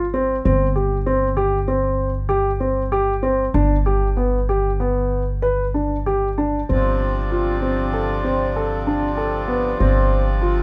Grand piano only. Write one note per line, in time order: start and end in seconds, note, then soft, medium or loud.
0.14 0.35 C4 medium
0.45 0.66 C4 medium
0.76 0.96 G4 medium
1.06 1.27 C4 medium
1.37 1.57 G4 medium
1.68 2.09 C4 medium
2.29 2.50 G4 medium
2.60 2.81 C4 medium
2.92 3.13 G4 medium
3.23 3.44 C4 medium
3.54 3.75 D4 medium
3.86 4.07 G4 medium
4.17 4.38 B3 medium
4.49 4.70 G4 medium
4.80 5.21 B3 medium
5.42 5.63 B4 medium
5.74 5.95 D4 medium
6.06 6.27 G4 medium
6.38 6.59 D4 medium
6.69 7.10 C4 medium
7.31 7.52 F4 medium
7.62 7.83 C4 medium
7.93 8.14 A4 medium
8.24 8.45 C4 medium
8.56 8.77 A4 medium
8.87 9.08 D4 medium
9.17 9.38 A4 medium
9.48 9.69 B3 medium
9.80 10.21 C4 medium
10.41 10.62 F4 medium